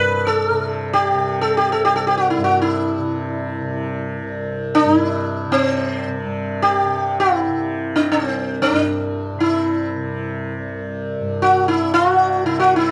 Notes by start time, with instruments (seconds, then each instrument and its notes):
Already playing: tanpura C2 G2 C3, sitar B4
0.27 sitar A4
0.51 tanpura C3
0.93 sitar G4
1.13 tanpura C3
1.41 sitar A4
1.57 sitar G4
1.72 tanpura C2, sitar A4
1.85 sitar G4
1.96 sitar A4
2.07 sitar G4
2.17 sitar F#4
2.30 sitar E4
2.37 tanpura G2
2.44 sitar F#4
2.62 sitar E4
2.98 tanpura C3
3.61 tanpura C3
4.22 tanpura C2
4.75 sitar D4
4.84 tanpura G2
4.98 sitar E4
5.46 tanpura C3
5.52 sitar C4
6.08 tanpura C3
6.24 tanpura G2
6.62 sitar G4
6.86 tanpura C3
7.20 sitar E4
7.48 tanpura C3
7.96 sitar D4
8.11 tanpura C2, sitar C4
8.62 sitar D4
8.72 tanpura G2
9.34 tanpura C3
9.40 sitar E4
9.96 tanpura C3
10.59 tanpura C2
11.20 tanpura G2
11.42 sitar F#4
11.68 sitar E4
11.82 tanpura C3
11.94 sitar F#4
12.44 tanpura C3, sitar E4
12.60 sitar F#4
12.76 sitar E4